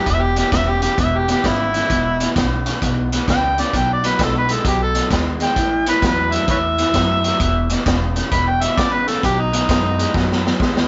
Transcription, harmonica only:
0.10 0.24 E5 loud
0.22 0.37 G4 loud
0.39 0.51 G4 loud
0.52 0.71 E5 loud
0.69 0.82 G4 medium
0.82 0.97 G4 loud
1.00 1.19 E5 medium
1.17 1.30 G4 loud
1.32 1.48 G4 medium
1.46 2.34 E4 loud
3.31 3.63 G5 loud
3.62 3.78 D5 medium
3.77 3.90 G5 loud
3.93 4.09 D5 medium
4.07 4.25 B4 medium
4.23 4.36 A4 medium
4.38 4.54 B4 medium
4.52 4.66 A4 medium
4.67 4.81 G4 medium
4.83 5.06 A4 loud
5.43 5.86 G5 medium
5.89 6.03 B4 medium
6.06 6.35 B4 medium
6.33 6.48 E5 medium
6.50 6.57 B4 medium
6.50 6.58 C#5 medium
6.50 7.83 E5 loud
8.33 8.50 B5 loud
8.49 8.63 G5 loud
8.62 8.80 E5 loud
8.78 8.94 D5 medium
8.92 9.07 B4 medium
9.07 9.22 A4 medium
9.24 9.41 G4 loud
9.40 10.28 D#4 medium

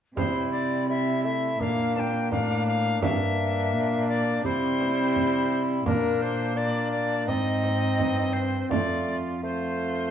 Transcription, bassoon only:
0.17 0.84 G3 medium
0.89 1.26 G3 medium
1.24 1.60 A3 medium
1.61 2.30 A#3 medium
2.31 3.01 A#3 medium
3.02 4.41 A#3 medium
4.44 5.83 G3 medium
5.86 6.53 A#3 medium
6.57 7.30 A#3 medium
7.28 8.72 C4 medium
8.71 9.26 A3 medium
9.43 10.11 A3 medium

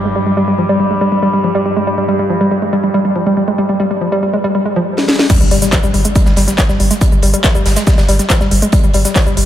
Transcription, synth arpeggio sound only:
0.05 0.08 G#3 medium
0.16 0.18 G3 loud
0.26 0.31 G3 medium
0.37 0.42 G3 loud
0.48 0.53 G3 medium
0.58 0.66 F3 medium
0.69 0.76 G3 loud
0.80 0.87 G3 medium
0.91 0.93 G#3 medium
1.01 1.04 G3 loud
1.12 1.17 G3 medium
1.23 1.27 G3 loud
1.33 1.38 G3 medium
1.44 1.51 F3 medium
1.55 1.62 G3 loud
1.66 1.73 G3 medium
1.76 1.79 G#3 medium
1.87 1.90 G3 medium
1.98 2.03 G3 medium
2.08 2.13 G3 loud
2.19 2.24 G3 medium
2.30 2.37 F3 medium
2.41 2.48 G3 loud
2.51 2.58 G3 medium
2.62 2.65 G#3 medium
2.73 2.76 G3 loud
2.84 2.88 G3 medium
2.94 2.99 G3 loud
3.05 3.10 G3 medium
3.16 3.23 F3 medium
3.27 3.33 G3 loud
3.37 3.44 G3 medium
3.48 3.51 G#3 medium
3.58 3.61 G3 loud
3.69 3.74 G3 medium
3.80 3.85 G3 loud
3.91 3.95 G3 medium
4.01 4.08 F3 medium
4.12 4.19 G3 loud
4.23 4.30 G3 medium
4.33 4.36 G#3 medium
4.44 4.47 G3 loud
4.55 4.60 G3 medium
4.65 4.73 G#3 medium
4.76 4.79 F3 loud
5.30 5.33 G3 loud
5.41 5.45 G3 medium
5.51 5.56 G3 loud
5.62 5.67 G3 medium
5.73 5.80 F3 medium
5.83 5.90 G3 loud
5.94 6.01 G3 medium
6.05 6.08 G#3 medium
6.15 6.18 G3 loud
6.26 6.31 G3 medium
6.37 6.42 G3 loud
6.48 6.52 G3 medium
6.58 6.65 F3 medium
6.69 6.76 G3 loud
6.80 6.87 G3 medium
6.91 6.93 G#3 medium
7.01 7.04 G3 loud
7.12 7.17 G3 medium
7.23 7.27 G3 loud
7.34 7.38 G3 medium
7.44 7.51 F3 medium
7.55 7.62 G3 loud
7.66 7.73 G3 medium
7.76 7.79 G#3 medium
7.87 7.90 G3 loud
7.98 8.03 G3 medium
8.09 8.13 G3 loud
8.19 8.24 G3 medium
8.30 8.37 F3 medium
8.41 8.48 G3 loud
8.51 8.58 G3 medium
8.62 8.65 G#3 medium
8.73 8.76 G3 loud
8.84 8.88 G3 medium
8.94 8.99 G3 loud
9.05 9.10 G3 medium
9.16 9.23 F3 medium
9.26 9.33 G3 loud
9.37 9.44 G3 medium

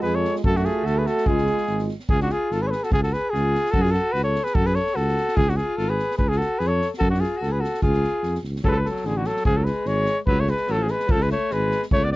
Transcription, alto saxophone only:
0.05 0.17 G#4 medium
0.16 0.36 A4 medium
0.46 0.58 F#4 medium
0.56 0.66 D4 medium
0.64 0.86 F4 medium
0.84 0.97 F#4 medium
0.96 1.08 G#4 medium
1.07 1.29 F#4 medium
1.27 1.89 F4 medium
2.11 2.19 F4 medium
2.20 2.33 D4 medium
2.31 2.50 F4 medium
2.50 2.64 F4 medium
2.62 2.70 G#4 medium
2.69 2.76 A4 medium
2.74 2.86 G#4 medium
2.84 2.91 F#4 medium
2.92 3.02 F4 medium
3.04 3.15 F#4 medium
3.14 3.35 G#4 medium
3.34 3.75 F4 medium
3.73 3.85 F#4 medium
3.83 3.96 F4 medium
3.94 4.14 F#4 medium
4.14 4.23 F#4 medium
4.24 4.46 A4 medium
4.45 4.56 G#4 medium
4.55 4.66 F#4 medium
4.64 4.76 G#4 medium
4.74 4.96 A4 medium
4.94 5.37 F#4 medium
5.35 5.49 F4 medium
5.48 5.58 D4 medium
5.56 5.77 F4 medium
5.77 5.92 F4 medium
5.90 6.17 G#4 medium
6.17 6.30 G#4 medium
6.29 6.40 F4 medium
6.38 6.61 F#4 medium
6.59 6.71 G#4 medium
6.69 6.91 A4 medium
6.99 7.09 F#4 medium
7.10 7.19 D4 medium
7.18 7.39 F4 medium
7.37 7.51 F#4 medium
7.49 7.61 G#4 medium
7.60 7.81 F#4 medium
7.81 8.40 F4 medium
8.63 8.69 F#3 medium
8.63 8.70 G#3 medium
8.69 8.77 F#3 medium
8.75 8.87 G#3 medium
8.85 9.08 F#3 medium
9.06 9.15 D3 medium
9.15 9.27 D3 medium
9.25 9.45 F#3 medium
9.46 9.59 F3 medium
9.58 9.67 F#3 medium
9.66 9.87 G#3 medium
9.87 10.19 G#3 medium
10.27 10.41 F#3 medium
10.40 10.50 A3 medium
10.49 10.70 G#3 medium
10.68 10.80 F#3 medium
10.78 10.90 F3 medium
10.88 11.09 G#3 medium
11.08 11.22 F3 medium
11.20 11.30 G#3 medium
11.31 11.54 A3 medium
11.52 11.83 G#3 medium
11.93 12.06 A3 medium
12.05 12.11 B3 medium
12.12 12.16 B3 medium

